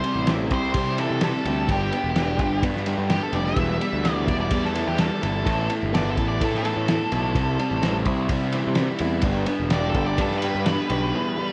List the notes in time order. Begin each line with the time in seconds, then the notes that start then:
Already playing: C3 C5
0.04 G3 C4, ride
0.15 A1
0.27 G3 C4 E4, snare, ride
0.51 C2 G3 C4 G4 C5, kick, ride
0.74 C3 G3 C4, kick, ride
0.98 E3 G3 C4 E4 A4, ride
1.10 C3
1.21 G3 C4 A4, snare, ride
1.45 D2 G3 C4 G4, ride
1.68 G1 G2 B3 D4 G4, kick, ride
1.92 B3 D4, ride
2.04 E1
2.15 B3 D4 G4, snare, ride
2.39 G1 B3 D4 G4, kick, ride
2.62 G2 B3 D4, kick, ride
2.76 snare
2.86 G3 B3 D4 G4, ride
2.98 G2
3.10 B3 D4 G4, snare, ride
3.23 A4
3.33 F1 B3 D4 G4 D5, ride
3.46 E5, snare
3.56 E1 E2 G3 B3 E4, kick, ride
3.80 G3 B3, ride
3.93 D2
4.05 G3 B3 E4, snare, ride
4.15 D5
4.28 E1 G3 B3 E4, kick, ride
4.41 D5
4.51 E2 G3 B3, kick, ride
4.65 A4, snare
4.74 E3 G3 B3 E4, ride
4.88 E2 G4
4.98 G3 B3 A4, snare, ride
5.22 G1 G3 B3 E4 A4, ride
5.44 A1 A2 B3 E4 A4, kick, ride
5.69 A3 B3 E4, ride
5.83 G1
5.93 B3 E4 A4 D5, snare, ride
6.10 A4
6.16 A1 B3 E4, kick, ride
6.28 D5
6.41 A2 A3 B3 E4 A4, kick, ride
6.54 A4, snare
6.63 E3 B3 E4 A4, ride
6.77 A2
6.88 A3 B3 E4, snare, ride
7.12 B1 B3 E4, ride
7.35 C2 C3 G3 C4 E4, kick, ride
7.59 G3 C4, ride
7.71 A1
7.82 G3 C4 E4, snare, ride
8.05 C2 G3 C4 E4, kick, ride
8.29 C3 G3 C4, kick, ride
8.52 E3 G3 C4 E4, ride
8.67 C3
8.75 G3 C4, snare, ride
8.99 E2 G3 C4 E4, ride
9.22 G1 G2 B3 D4 G4, kick, ride
9.47 B3 D4, ride
9.60 E1
9.70 B3 D4 G4 D5, snare, ride
9.90 A4
9.94 G1 B3 D4 G4, kick, ride
10.06 D5
10.18 G2 B3 D4 A4, kick, ride
10.31 snare
10.38 B4, ride
10.42 G3 B3 D4 G4
10.55 G2
10.66 B3 D4, snare, ride
10.90 B1 B3 D4 G4, ride
11.14 E2 G3 B3 E4
11.38 G3 B3